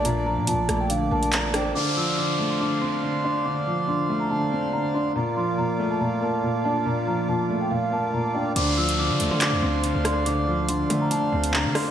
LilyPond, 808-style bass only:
\new Staff \with { instrumentName = "808-style bass" } { \clef bass \time 4/4 \key d \minor \tempo 4 = 141 bes,,8. bes,16. bes,,16. bes,,4 bes,,8. a,,8. | r1 | r1 | r1 |
r1 | d,4~ d,16 d16 d,16 d8 e,16 d,8. d,8.~ | d,4. d4 d,8. d16 r8 | }